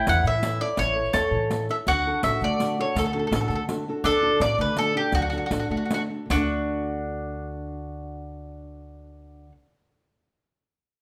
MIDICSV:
0, 0, Header, 1, 6, 480
1, 0, Start_track
1, 0, Key_signature, 2, "major"
1, 0, Tempo, 362538
1, 1030, Time_signature, 6, 3, 24, 8
1, 7287, Tempo, 406229
1, 13799, End_track
2, 0, Start_track
2, 0, Title_t, "Mandolin"
2, 0, Program_c, 0, 25
2, 122, Note_on_c, 0, 78, 115
2, 344, Note_off_c, 0, 78, 0
2, 361, Note_on_c, 0, 76, 112
2, 784, Note_off_c, 0, 76, 0
2, 807, Note_on_c, 0, 74, 97
2, 1019, Note_off_c, 0, 74, 0
2, 1044, Note_on_c, 0, 73, 126
2, 1951, Note_off_c, 0, 73, 0
2, 2259, Note_on_c, 0, 76, 81
2, 2325, Note_off_c, 0, 76, 0
2, 2489, Note_on_c, 0, 78, 104
2, 2957, Note_off_c, 0, 78, 0
2, 2962, Note_on_c, 0, 76, 83
2, 3185, Note_off_c, 0, 76, 0
2, 3232, Note_on_c, 0, 74, 99
2, 3667, Note_off_c, 0, 74, 0
2, 3714, Note_on_c, 0, 73, 90
2, 3920, Note_off_c, 0, 73, 0
2, 3950, Note_on_c, 0, 69, 86
2, 4029, Note_off_c, 0, 69, 0
2, 4045, Note_on_c, 0, 69, 59
2, 4126, Note_off_c, 0, 69, 0
2, 4145, Note_on_c, 0, 69, 56
2, 4211, Note_off_c, 0, 69, 0
2, 4227, Note_on_c, 0, 69, 44
2, 4313, Note_off_c, 0, 69, 0
2, 4331, Note_on_c, 0, 69, 62
2, 4414, Note_off_c, 0, 69, 0
2, 4438, Note_on_c, 0, 69, 51
2, 4493, Note_off_c, 0, 69, 0
2, 4509, Note_on_c, 0, 69, 57
2, 4590, Note_off_c, 0, 69, 0
2, 4606, Note_on_c, 0, 69, 51
2, 4690, Note_off_c, 0, 69, 0
2, 4706, Note_on_c, 0, 69, 65
2, 4799, Note_off_c, 0, 69, 0
2, 5369, Note_on_c, 0, 69, 115
2, 5803, Note_off_c, 0, 69, 0
2, 5846, Note_on_c, 0, 74, 110
2, 6056, Note_off_c, 0, 74, 0
2, 6105, Note_on_c, 0, 71, 104
2, 6312, Note_off_c, 0, 71, 0
2, 6335, Note_on_c, 0, 69, 107
2, 6543, Note_off_c, 0, 69, 0
2, 6579, Note_on_c, 0, 67, 89
2, 6787, Note_off_c, 0, 67, 0
2, 6814, Note_on_c, 0, 66, 98
2, 6896, Note_off_c, 0, 66, 0
2, 6911, Note_on_c, 0, 66, 64
2, 6997, Note_off_c, 0, 66, 0
2, 7013, Note_on_c, 0, 66, 63
2, 7098, Note_off_c, 0, 66, 0
2, 7117, Note_on_c, 0, 66, 55
2, 7201, Note_off_c, 0, 66, 0
2, 7230, Note_on_c, 0, 66, 63
2, 7300, Note_off_c, 0, 66, 0
2, 7314, Note_on_c, 0, 66, 43
2, 7381, Note_off_c, 0, 66, 0
2, 7395, Note_on_c, 0, 66, 58
2, 7480, Note_off_c, 0, 66, 0
2, 7534, Note_on_c, 0, 66, 47
2, 7589, Note_off_c, 0, 66, 0
2, 7603, Note_on_c, 0, 66, 54
2, 7684, Note_off_c, 0, 66, 0
2, 7700, Note_on_c, 0, 66, 41
2, 7782, Note_off_c, 0, 66, 0
2, 7804, Note_on_c, 0, 66, 74
2, 7881, Note_off_c, 0, 66, 0
2, 8240, Note_on_c, 0, 62, 106
2, 12028, Note_off_c, 0, 62, 0
2, 13799, End_track
3, 0, Start_track
3, 0, Title_t, "Mandolin"
3, 0, Program_c, 1, 25
3, 0, Note_on_c, 1, 64, 109
3, 1496, Note_off_c, 1, 64, 0
3, 1501, Note_on_c, 1, 69, 100
3, 2181, Note_off_c, 1, 69, 0
3, 2488, Note_on_c, 1, 66, 114
3, 5306, Note_off_c, 1, 66, 0
3, 5349, Note_on_c, 1, 62, 91
3, 7945, Note_off_c, 1, 62, 0
3, 8242, Note_on_c, 1, 66, 77
3, 12030, Note_off_c, 1, 66, 0
3, 13799, End_track
4, 0, Start_track
4, 0, Title_t, "Nylon-string guitar"
4, 0, Program_c, 2, 24
4, 108, Note_on_c, 2, 64, 61
4, 112, Note_on_c, 2, 69, 43
4, 116, Note_on_c, 2, 73, 69
4, 333, Note_on_c, 2, 52, 71
4, 480, Note_off_c, 2, 69, 0
4, 480, Note_off_c, 2, 73, 0
4, 481, Note_off_c, 2, 64, 0
4, 559, Note_on_c, 2, 64, 54
4, 569, Note_on_c, 2, 69, 49
4, 574, Note_on_c, 2, 73, 58
4, 788, Note_off_c, 2, 52, 0
4, 790, Note_off_c, 2, 64, 0
4, 800, Note_off_c, 2, 73, 0
4, 801, Note_off_c, 2, 69, 0
4, 806, Note_on_c, 2, 64, 54
4, 815, Note_on_c, 2, 69, 52
4, 820, Note_on_c, 2, 73, 63
4, 1017, Note_on_c, 2, 52, 59
4, 1184, Note_off_c, 2, 64, 0
4, 1189, Note_off_c, 2, 73, 0
4, 1190, Note_off_c, 2, 69, 0
4, 1260, Note_on_c, 2, 64, 50
4, 1262, Note_on_c, 2, 69, 44
4, 1275, Note_on_c, 2, 73, 53
4, 1489, Note_off_c, 2, 52, 0
4, 1499, Note_off_c, 2, 64, 0
4, 1500, Note_off_c, 2, 69, 0
4, 1511, Note_off_c, 2, 73, 0
4, 1512, Note_on_c, 2, 64, 50
4, 1520, Note_on_c, 2, 69, 46
4, 1527, Note_on_c, 2, 73, 63
4, 1750, Note_on_c, 2, 52, 66
4, 1903, Note_off_c, 2, 64, 0
4, 1903, Note_off_c, 2, 69, 0
4, 1909, Note_off_c, 2, 73, 0
4, 1985, Note_on_c, 2, 64, 58
4, 1995, Note_on_c, 2, 69, 53
4, 2000, Note_on_c, 2, 73, 55
4, 2223, Note_off_c, 2, 52, 0
4, 2233, Note_off_c, 2, 64, 0
4, 2242, Note_off_c, 2, 69, 0
4, 2249, Note_on_c, 2, 64, 49
4, 2251, Note_off_c, 2, 73, 0
4, 2258, Note_on_c, 2, 69, 48
4, 2267, Note_on_c, 2, 73, 56
4, 2437, Note_off_c, 2, 64, 0
4, 2442, Note_off_c, 2, 69, 0
4, 2447, Note_off_c, 2, 73, 0
4, 2504, Note_on_c, 2, 50, 64
4, 2728, Note_on_c, 2, 62, 48
4, 2736, Note_on_c, 2, 66, 44
4, 2743, Note_on_c, 2, 69, 58
4, 2964, Note_off_c, 2, 50, 0
4, 2964, Note_off_c, 2, 66, 0
4, 2969, Note_off_c, 2, 62, 0
4, 2980, Note_off_c, 2, 69, 0
4, 2983, Note_on_c, 2, 62, 51
4, 2984, Note_on_c, 2, 66, 47
4, 2996, Note_on_c, 2, 69, 67
4, 3206, Note_on_c, 2, 57, 74
4, 3361, Note_off_c, 2, 66, 0
4, 3364, Note_off_c, 2, 62, 0
4, 3371, Note_off_c, 2, 69, 0
4, 3464, Note_on_c, 2, 62, 53
4, 3470, Note_on_c, 2, 66, 39
4, 3471, Note_on_c, 2, 69, 56
4, 3672, Note_off_c, 2, 57, 0
4, 3675, Note_off_c, 2, 62, 0
4, 3678, Note_off_c, 2, 66, 0
4, 3687, Note_off_c, 2, 69, 0
4, 3689, Note_on_c, 2, 62, 54
4, 3695, Note_on_c, 2, 66, 52
4, 3703, Note_on_c, 2, 69, 64
4, 3935, Note_on_c, 2, 57, 65
4, 4072, Note_off_c, 2, 62, 0
4, 4074, Note_off_c, 2, 66, 0
4, 4080, Note_off_c, 2, 69, 0
4, 4167, Note_on_c, 2, 62, 49
4, 4167, Note_on_c, 2, 66, 41
4, 4181, Note_on_c, 2, 69, 62
4, 4381, Note_off_c, 2, 69, 0
4, 4382, Note_off_c, 2, 66, 0
4, 4383, Note_off_c, 2, 62, 0
4, 4394, Note_off_c, 2, 57, 0
4, 4394, Note_on_c, 2, 62, 55
4, 4401, Note_on_c, 2, 66, 55
4, 4406, Note_on_c, 2, 69, 57
4, 4635, Note_on_c, 2, 57, 75
4, 4785, Note_off_c, 2, 66, 0
4, 4785, Note_off_c, 2, 69, 0
4, 4786, Note_off_c, 2, 62, 0
4, 4900, Note_on_c, 2, 62, 58
4, 4904, Note_on_c, 2, 66, 45
4, 4908, Note_on_c, 2, 69, 54
4, 5103, Note_off_c, 2, 57, 0
4, 5122, Note_off_c, 2, 62, 0
4, 5134, Note_off_c, 2, 66, 0
4, 5138, Note_on_c, 2, 62, 51
4, 5140, Note_off_c, 2, 69, 0
4, 5149, Note_on_c, 2, 66, 57
4, 5156, Note_on_c, 2, 69, 67
4, 5380, Note_on_c, 2, 50, 68
4, 5510, Note_off_c, 2, 62, 0
4, 5517, Note_off_c, 2, 66, 0
4, 5521, Note_off_c, 2, 69, 0
4, 5592, Note_on_c, 2, 62, 50
4, 5598, Note_on_c, 2, 66, 45
4, 5602, Note_on_c, 2, 69, 60
4, 5814, Note_off_c, 2, 66, 0
4, 5815, Note_off_c, 2, 62, 0
4, 5819, Note_off_c, 2, 69, 0
4, 5827, Note_on_c, 2, 62, 51
4, 5828, Note_off_c, 2, 50, 0
4, 5832, Note_on_c, 2, 66, 50
4, 5843, Note_on_c, 2, 69, 58
4, 6070, Note_on_c, 2, 57, 70
4, 6212, Note_off_c, 2, 62, 0
4, 6212, Note_off_c, 2, 66, 0
4, 6215, Note_off_c, 2, 69, 0
4, 6326, Note_on_c, 2, 62, 51
4, 6332, Note_on_c, 2, 66, 48
4, 6337, Note_on_c, 2, 69, 64
4, 6534, Note_off_c, 2, 57, 0
4, 6534, Note_off_c, 2, 62, 0
4, 6546, Note_off_c, 2, 66, 0
4, 6549, Note_off_c, 2, 69, 0
4, 6550, Note_on_c, 2, 62, 55
4, 6560, Note_on_c, 2, 66, 45
4, 6569, Note_on_c, 2, 69, 60
4, 6796, Note_on_c, 2, 54, 60
4, 6942, Note_off_c, 2, 62, 0
4, 6950, Note_off_c, 2, 66, 0
4, 6951, Note_off_c, 2, 69, 0
4, 7050, Note_on_c, 2, 62, 50
4, 7057, Note_on_c, 2, 66, 46
4, 7060, Note_on_c, 2, 69, 49
4, 7270, Note_off_c, 2, 62, 0
4, 7278, Note_off_c, 2, 54, 0
4, 7281, Note_off_c, 2, 66, 0
4, 7285, Note_off_c, 2, 69, 0
4, 7285, Note_on_c, 2, 62, 54
4, 7295, Note_on_c, 2, 66, 52
4, 7302, Note_on_c, 2, 69, 59
4, 7524, Note_on_c, 2, 57, 76
4, 7662, Note_off_c, 2, 62, 0
4, 7668, Note_off_c, 2, 66, 0
4, 7670, Note_off_c, 2, 69, 0
4, 7761, Note_on_c, 2, 62, 45
4, 7767, Note_on_c, 2, 66, 42
4, 7774, Note_on_c, 2, 69, 54
4, 7976, Note_off_c, 2, 62, 0
4, 7984, Note_off_c, 2, 57, 0
4, 7989, Note_off_c, 2, 69, 0
4, 7990, Note_on_c, 2, 62, 51
4, 7992, Note_off_c, 2, 66, 0
4, 8004, Note_on_c, 2, 66, 43
4, 8006, Note_on_c, 2, 69, 45
4, 8177, Note_on_c, 2, 50, 42
4, 8184, Note_off_c, 2, 62, 0
4, 8192, Note_off_c, 2, 69, 0
4, 8194, Note_off_c, 2, 66, 0
4, 8292, Note_on_c, 2, 57, 58
4, 11965, Note_off_c, 2, 50, 0
4, 12080, Note_off_c, 2, 57, 0
4, 13799, End_track
5, 0, Start_track
5, 0, Title_t, "Upright bass"
5, 0, Program_c, 3, 32
5, 105, Note_on_c, 3, 40, 113
5, 250, Note_off_c, 3, 40, 0
5, 315, Note_on_c, 3, 45, 93
5, 778, Note_off_c, 3, 45, 0
5, 1031, Note_on_c, 3, 33, 95
5, 1343, Note_off_c, 3, 33, 0
5, 1504, Note_on_c, 3, 40, 92
5, 1661, Note_off_c, 3, 40, 0
5, 1738, Note_on_c, 3, 45, 86
5, 2215, Note_off_c, 3, 45, 0
5, 2478, Note_on_c, 3, 38, 93
5, 2794, Note_off_c, 3, 38, 0
5, 2962, Note_on_c, 3, 33, 97
5, 3117, Note_off_c, 3, 33, 0
5, 3199, Note_on_c, 3, 50, 85
5, 3667, Note_off_c, 3, 50, 0
5, 3910, Note_on_c, 3, 38, 104
5, 4226, Note_off_c, 3, 38, 0
5, 4389, Note_on_c, 3, 33, 104
5, 4547, Note_off_c, 3, 33, 0
5, 4624, Note_on_c, 3, 50, 85
5, 5093, Note_off_c, 3, 50, 0
5, 5347, Note_on_c, 3, 38, 102
5, 5658, Note_off_c, 3, 38, 0
5, 5828, Note_on_c, 3, 33, 115
5, 5981, Note_off_c, 3, 33, 0
5, 6072, Note_on_c, 3, 50, 101
5, 6538, Note_off_c, 3, 50, 0
5, 6787, Note_on_c, 3, 38, 102
5, 7113, Note_off_c, 3, 38, 0
5, 7291, Note_on_c, 3, 33, 89
5, 7439, Note_off_c, 3, 33, 0
5, 8228, Note_on_c, 3, 38, 99
5, 12016, Note_off_c, 3, 38, 0
5, 13799, End_track
6, 0, Start_track
6, 0, Title_t, "Riq"
6, 91, Note_on_c, 9, 54, 85
6, 223, Note_off_c, 9, 54, 0
6, 335, Note_on_c, 9, 54, 21
6, 468, Note_off_c, 9, 54, 0
6, 567, Note_on_c, 9, 54, 74
6, 699, Note_off_c, 9, 54, 0
6, 1022, Note_on_c, 9, 54, 65
6, 1155, Note_off_c, 9, 54, 0
6, 1506, Note_on_c, 9, 54, 72
6, 1639, Note_off_c, 9, 54, 0
6, 1994, Note_on_c, 9, 54, 65
6, 2126, Note_off_c, 9, 54, 0
6, 2240, Note_on_c, 9, 54, 16
6, 2372, Note_off_c, 9, 54, 0
6, 2471, Note_on_c, 9, 54, 48
6, 2604, Note_off_c, 9, 54, 0
6, 2953, Note_on_c, 9, 54, 69
6, 3086, Note_off_c, 9, 54, 0
6, 3192, Note_on_c, 9, 54, 18
6, 3325, Note_off_c, 9, 54, 0
6, 3443, Note_on_c, 9, 54, 61
6, 3575, Note_off_c, 9, 54, 0
6, 3924, Note_on_c, 9, 54, 75
6, 4056, Note_off_c, 9, 54, 0
6, 4402, Note_on_c, 9, 54, 82
6, 4534, Note_off_c, 9, 54, 0
6, 4638, Note_on_c, 9, 54, 21
6, 4770, Note_off_c, 9, 54, 0
6, 4881, Note_on_c, 9, 54, 63
6, 5014, Note_off_c, 9, 54, 0
6, 5361, Note_on_c, 9, 54, 64
6, 5493, Note_off_c, 9, 54, 0
6, 5843, Note_on_c, 9, 54, 76
6, 5975, Note_off_c, 9, 54, 0
6, 6070, Note_on_c, 9, 54, 15
6, 6202, Note_off_c, 9, 54, 0
6, 6310, Note_on_c, 9, 54, 62
6, 6442, Note_off_c, 9, 54, 0
6, 6781, Note_on_c, 9, 54, 52
6, 6914, Note_off_c, 9, 54, 0
6, 7043, Note_on_c, 9, 54, 21
6, 7176, Note_off_c, 9, 54, 0
6, 7293, Note_on_c, 9, 54, 74
6, 7412, Note_off_c, 9, 54, 0
6, 7762, Note_on_c, 9, 54, 68
6, 7880, Note_off_c, 9, 54, 0
6, 8229, Note_on_c, 9, 54, 78
6, 8347, Note_off_c, 9, 54, 0
6, 13799, End_track
0, 0, End_of_file